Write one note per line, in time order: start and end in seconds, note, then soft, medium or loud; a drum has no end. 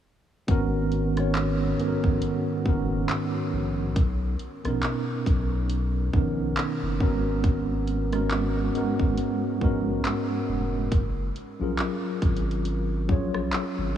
0.47 1.75 G#1 loud
0.47 1.11 G#2 loud
0.47 1.11 D#3 loud
0.47 1.11 B3 loud
0.47 1.12 C#4 loud
0.47 1.12 F#4 loud
0.47 1.13 A#4 loud
0.47 kick loud
0.47 closed hi-hat medium
0.92 closed hi-hat medium
1.16 1.74 G#2 medium
1.16 1.74 D#3 medium
1.16 1.75 B3 medium
1.16 1.75 C#4 medium
1.16 1.76 F#4 medium
1.16 1.76 C#5 medium
1.16 cross-stick medium
1.16 closed hi-hat medium
1.35 clap loud
1.35 closed hi-hat medium
1.78 1.89 A#1 soft
1.78 2.59 G#2 medium
1.78 2.60 D#3 medium
1.78 2.60 B3 medium
1.78 2.61 C#4 medium
1.78 2.61 F#4 medium
1.78 1.88 A4 medium
1.78 closed hi-hat medium
1.88 2.65 A#4 medium
2.04 2.20 A#1 medium
2.04 kick medium
2.22 closed hi-hat medium
2.65 3.05 F#1 loud
2.65 3.96 G#2 medium
2.65 3.96 D#3 medium
2.65 3.96 B3 medium
2.65 3.97 C#4 medium
2.65 3.97 F#4 medium
2.65 3.97 A#4 medium
2.65 kick medium
3.09 clap loud
3.09 closed hi-hat medium
3.53 3.92 A#1 medium
3.96 4.36 B1 loud
3.96 kick loud
3.96 closed hi-hat medium
4.39 closed hi-hat medium
4.64 4.81 A#1 loud
4.64 6.03 B2 medium
4.64 6.04 B3 medium
4.64 6.04 C#4 medium
4.64 6.05 D#4 medium
4.64 6.05 A#4 medium
4.64 cross-stick medium
4.64 closed hi-hat medium
4.83 clap loud
4.83 closed hi-hat medium
5.26 6.09 B1 medium
5.26 kick loud
5.26 closed hi-hat medium
5.70 closed hi-hat medium
6.13 6.53 A#1 loud
6.13 6.94 D#3 medium
6.13 6.95 B3 medium
6.13 6.95 C#4 medium
6.13 6.96 D#4 medium
6.13 6.96 A#4 medium
6.13 kick medium
6.57 clap loud
6.57 closed hi-hat medium
6.82 6.99 F#1 loud
6.99 8.70 G#1 loud
6.99 8.02 G#2 medium
6.99 8.03 G#3 medium
6.99 8.03 B3 medium
6.99 8.03 C#4 medium
6.99 8.04 F#4 medium
6.99 kick medium
7.03 8.04 A#4 loud
7.44 kick loud
7.44 closed hi-hat medium
7.87 closed hi-hat medium
8.11 8.70 G#2 medium
8.11 8.70 G#3 medium
8.11 8.70 B3 medium
8.11 8.71 C#4 medium
8.11 8.71 F#4 medium
8.11 8.71 A#4 medium
8.11 cross-stick medium
8.11 closed hi-hat medium
8.31 clap loud
8.31 closed hi-hat medium
8.73 8.85 G#1 medium
8.73 9.55 G#2 medium
8.73 9.56 G#3 medium
8.73 9.56 B3 medium
8.73 9.56 C#4 medium
8.73 9.57 F#4 medium
8.73 closed hi-hat medium
8.77 9.57 A#4 medium
8.99 9.16 G#1 loud
8.99 kick medium
9.17 closed hi-hat medium
9.60 10.01 A#1 loud
9.60 10.91 G#2 medium
9.60 10.92 G#3 medium
9.60 10.92 B3 medium
9.60 10.92 C#4 medium
9.60 10.93 F#4 medium
9.60 10.93 A#4 loud
9.60 kick medium
10.05 clap loud
10.05 closed hi-hat medium
10.48 10.88 F1 loud
10.92 11.31 F#1 loud
10.92 kick loud
10.92 closed hi-hat medium
11.36 closed hi-hat medium
11.59 11.77 A#1 loud
11.59 12.99 F#3 medium
11.59 12.99 C#4 medium
11.59 13.00 F4 medium
11.59 13.00 G#4 medium
11.59 13.01 A#4 medium
11.78 clap loud
11.78 closed hi-hat medium
12.22 13.11 G#1 loud
12.22 kick loud
12.22 closed hi-hat medium
12.37 closed hi-hat soft
12.51 closed hi-hat soft
12.65 closed hi-hat medium
13.08 13.49 A#1 loud
13.08 13.90 F#3 medium
13.08 13.90 C#4 medium
13.08 13.91 F4 medium
13.08 13.91 G#4 medium
13.08 kick medium
13.12 13.92 C#5 medium
13.34 cross-stick medium
13.52 clap loud
13.52 closed hi-hat medium
13.78 13.94 G#1 medium